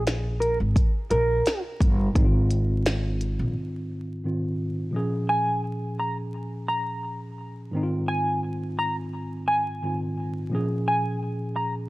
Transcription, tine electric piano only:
2.13 G#2 D#3 C4
2.18 D#4
2.25 F4
4.24 G#2 D#3 C4 F4
4.91 A#2 F3 C#4
4.96 G#4
7.71 G#2 D#3 C4
7.76 D#4
7.83 F4
9.83 G#2 D#3 C4 F4
10.50 A#2 F3 C#4
10.54 G#4

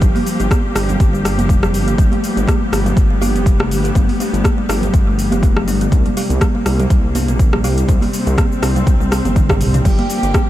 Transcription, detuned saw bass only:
0.02 G1
0.40 G1
0.76 G1
1.00 G1
1.38 F1
1.74 G1
1.98 G1
2.37 G1
2.72 G1
2.97 G1
3.35 F1
3.71 G1
3.95 G1
4.33 G1
4.69 G1
4.94 G1
5.32 F1
5.67 G1
5.92 C2
6.30 C2
6.66 C2
6.90 C2
7.28 A#1
7.64 C2
7.89 C2
8.27 C2
8.63 C2
8.87 C2
9.25 G1
9.61 C2
9.85 G1
10.23 G1

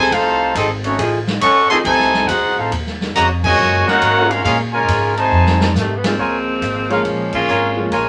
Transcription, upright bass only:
Already playing: C#2
0.12 C2
0.55 G#1
0.98 A1
1.41 C#2
1.70 muted upright bass stroke
1.85 C2
2.28 C#2
2.42 C2
2.56 A1
2.71 D#2
3.15 F2
3.57 F#2
4.01 G#2
4.45 A#2
4.88 G#2
5.31 F2
5.74 G#2
6.18 C#2
6.61 G#1
7.05 A#1
7.48 G#1
7.92 A#1

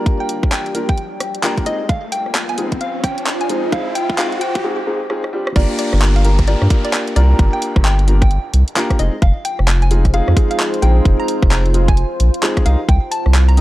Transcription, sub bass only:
5.56 G1
5.93 G1
6.62 G2
7.16 C2
7.39 G1
7.76 G1
8.54 C2
8.99 F1
9.22 F1
9.59 F1
10.28 F2
10.83 A#1
11.05 F1
11.42 F1
12.20 A#1
12.66 C2
12.89 C2
13.26 C2

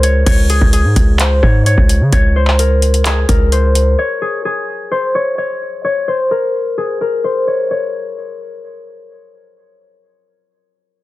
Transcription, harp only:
Already playing: G#4 A#4
0.03 C#5
0.26 C#5
0.50 G#4
0.73 G#4
1.20 C5
1.43 C#5
1.66 C#5
2.13 C#5
2.36 C5
2.59 A#4
3.06 G#4
3.29 A#4
3.52 C5
3.99 C#5
4.22 G#4
4.45 G#4
4.91 C5
5.15 C#5
5.38 C#5
5.85 C#5
6.08 C5
6.31 A#4
6.78 G#4
7.01 A#4
7.24 C5
7.47 C#5
7.71 C#5

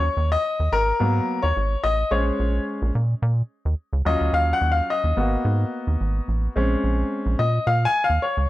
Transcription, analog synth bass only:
0.17 D#2
0.60 D#2
0.72 G#1
1.01 G#2
1.44 D#2
1.57 G#1
1.84 A1
2.11 A#1
2.39 A#1
2.82 A#1
2.95 A#2
3.22 A#2
3.65 D#2
3.93 C#2
4.06 D#2
4.21 D2
4.33 D#2
4.61 D#2
5.04 D#2
5.17 G#1
5.45 G#2
5.87 D#2
6.01 G#1
6.28 A1
6.56 A#1
6.84 A#1
7.26 A#1
7.39 A#2
7.67 A#2
8.10 D#2
8.37 C#2

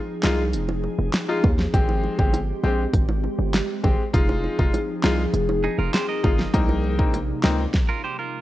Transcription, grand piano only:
0.24 G#3 D#4 F4
1.29 G#3 D#4 F4
1.74 G#3 C4 G4
2.18 G#3 C4 G4
2.64 G#3 C4 G4
3.83 G#3 C4 G4
4.13 G#3 D#4 F4
4.59 G#3 D#4 F4
5.04 G#3 D#4 F4
6.24 G#3 D#4 F4
6.53 A#3 C4 D#4
6.98 A#3 C4 D#4
7.43 A#3 C4 D#4

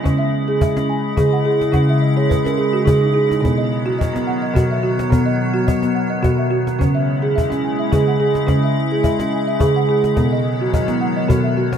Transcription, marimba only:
Already playing: E5
0.03 C#3 C#4
0.18 E5
0.48 G#4
0.62 E5
0.77 C#4
0.89 G#5
1.17 C#3 G#4
1.33 F#5
1.45 G#4
1.73 C#3 C#4 F#5
1.89 E5
2.02 D#5
2.17 G#4 C#5
2.29 B4
2.45 C#4 A#4
2.58 G#4
2.73 F#4
2.85 C#3 E4 G#4
3.01 D#4
3.14 E4 G#4
3.29 D#4
3.41 B2 B3
3.58 D#5
3.86 F#4
3.99 D#5
4.13 B3
4.27 F#5
4.42 D#5
4.54 B2 F#4
4.71 E5
4.83 F#4
5.10 B2 B3
5.26 D#5
5.54 F#4
5.67 D#5
5.82 B3
5.95 F#5
6.10 D#5
6.22 B2 F#4
6.38 E5
6.51 F#4
6.79 C#3 C#4
6.95 E5
7.22 G#4
7.36 E5
7.50 C#4
7.65 G#5
7.79 E5
7.92 C#3 G#4
8.08 F#5
8.20 G#4
8.47 C#3 C#4
8.63 E5
8.92 G#4
9.04 E5
9.19 C#4
9.32 G#5
9.47 E5
9.60 C#3 G#4
9.76 F#5
9.89 G#4
10.16 B2 B3
10.32 D#5
10.61 F#4
10.73 D#5
10.88 B3
11.01 F#5
11.16 D#5
11.28 B2 F#4
11.44 E5
11.57 F#4

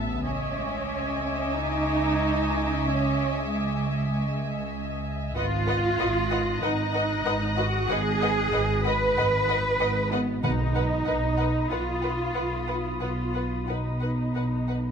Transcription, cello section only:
Already playing: B3
0.25 C#4
1.54 D#4
2.82 C#4
3.46 G#3
5.36 F4
6.63 D#4
7.58 F#4
7.90 G#4
8.86 B4
10.12 B3
10.44 D#4
11.71 F4
13.02 F4
13.69 D#4

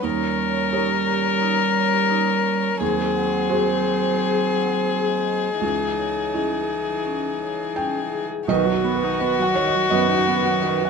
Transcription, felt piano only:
0.03 D#2
0.73 G4 A#4 C#5
2.80 D#2
3.49 F#4 G#4 C5
5.61 C#2
6.34 E4 G#4 D#5
7.76 G5
8.48 B1 D#5
8.72 F#4
8.96 B4
9.19 D#5
9.42 F#5
9.55 C#5
9.67 D#5
9.90 F#2 D#5
10.14 F#4
10.37 B4
10.62 D#5
10.85 F#5

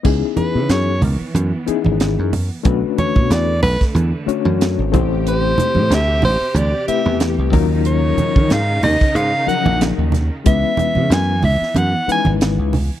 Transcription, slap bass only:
0.05 C#2
0.38 muted slap bass stroke
0.55 C#3
0.69 F#2
1.01 C#2
1.21 muted slap bass stroke
1.35 F#2
1.68 muted slap bass stroke
1.86 G#1
2.19 F#2
2.65 B1
2.98 muted slap bass stroke
3.16 B2
3.30 E2
3.63 B1
3.81 muted slap bass stroke
3.95 E2
4.27 muted slap bass stroke
4.45 F#2
4.79 G#1
4.94 A1
5.76 A2
5.90 D2
6.23 A1
6.54 D2
6.88 muted slap bass stroke
7.06 E2
7.38 C2
7.53 D#2
8.17 muted slap bass stroke
8.36 D#3
8.51 G#2
8.83 D#2
9.15 G#2
9.47 muted slap bass stroke
9.65 A#1
9.98 D#2
10.46 C#2
10.79 muted slap bass stroke
10.96 C#3
11.10 F#2
11.43 C#2
11.61 muted slap bass stroke
11.76 F#2
12.08 muted slap bass stroke
12.26 G#1
12.58 C#2

